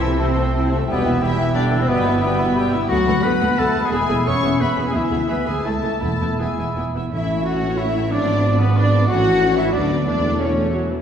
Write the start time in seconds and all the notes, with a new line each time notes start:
Already playing: C2 C3 E3 E4 E5
0.02 A3 C4 E5 A5
0.19 C3 C4 E4 C5 E5 A5
0.35 A3 C4 E5 A5
0.53 C4 E4 C5 E5 A5
0.71 A3 C4 E5 A5
0.88 E1 E2 B2 G3 B3 G4 B4 E5 G5
1.04 B3 E4 E5 G5
1.20 E3 G3 E4 G4 E5 G5
1.38 B3 E4 E5 G5
1.54 D3 G3 D4 G4 D5 E5 G5
1.70 B3 E4 E5 G5
1.79 C3 C4 C5
1.87 G1 G2 B2 G3 B3 G4 B4 E5 G5 B5
2.05 B3 E4 E5 B5
2.20 B2 G3 B3 G4 B4 E5 G5 B5
2.39 B3 E4 E5 B5
2.55 G3 G4 E5 G5 B5
2.72 B3 E4 E5 B5
2.88 D2 F#3 B3 F#4 A4 F#5 B5
3.07 D2 B3 A4 F#5
3.22 D2 B3 A4 B4 F#5 B5
3.40 D2 B3 A4 F#5
3.58 D2 A3 B3 A4 F#5 A5
3.74 D2 B3 A4 F#5
3.83 G#3 G#4 G#5
3.92 E1 E2 G#3 B3 G#4 E5 G#5
4.09 E1 E2 B3 G#4 E5
4.26 E1 E2 B3 C#4 G#4 C#5 E5 C#6
4.43 E1 E2 B3 G#4 E5
4.59 E1 E2 B3 G#4 B4 E5 B5
4.76 E1 E2 B3 G#4 E5
4.85 G#3 G#5
4.90 B3 G#4
4.94 D2 E3 E4 G#4 E5 G#5
5.11 D2 B3 G#4 E5
5.27 D2 B3 G#4 B4 E5 G#5 B5
5.45 D2 G#3 B3 G#4 E5 G#5
5.64 C#2 A3 E4 A4 E5 A5
5.81 C#2 A3 E4 E5
6.01 E1 E2 A3 B3 E4 A4 E5 A5 B5
6.20 E1 E2 B3 E4 E5
6.38 E1 E2 G#3 B3 E4 G#4 E5 G#5 B5
6.57 E1 E2 B3 E4 E5
6.75 E1 E2 B3 E4 E5
6.94 E1 E2 B3 E4 E5
7.11 A1 A2 E3 A3 C#4 E4 E5
7.45 F#4 C#5 F#5
7.78 E3 C#4 E4 E5
8.11 G#1 F3 B3 D4 D5
8.44 B4
8.60 B3 B4
8.76 F3 B3 D4 D5
9.07 A1 E3 C#4 F#4 A4 F#5
9.41 A4
9.55 E4 E5
9.72 D2 F#3 B3 D4 B4 D5
10.05 E1 E2 E3 A3 D4 E4 A4 D5
10.39 E3 A3 C#4 E4 C#5
10.55 A3
10.72 F#3 G#3 E4
10.89 E3